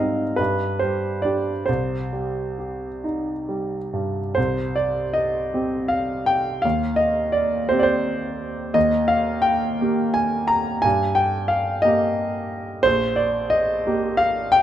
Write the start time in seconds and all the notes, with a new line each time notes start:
Already playing: G#2 G3 D#5 F5
0.00 C4 D#4
0.36 G2 B4
0.79 G3 C5
1.22 D4 G4 D5
1.66 C2 C5
2.13 G3
2.59 G4
3.04 D#4
3.49 G3
3.93 G2
4.35 C2 C5
4.76 D5
5.13 D#5
5.54 C4 G4
5.88 F5
6.26 G5
6.62 D#2 F5
6.96 D#5
7.32 D5
7.69 C4 G4 C5
7.79 C5 D5
8.74 D#2 D#5
9.08 F5
9.42 G5
9.81 A#3 G4
10.14 G#5
10.48 A#5
10.82 G2 G#5
11.15 G5
11.48 F5
11.82 A#3 G4 D#5
12.83 A#1 C5
13.16 D5
13.50 D#5
13.87 A#3 G4
14.17 F5
14.52 G5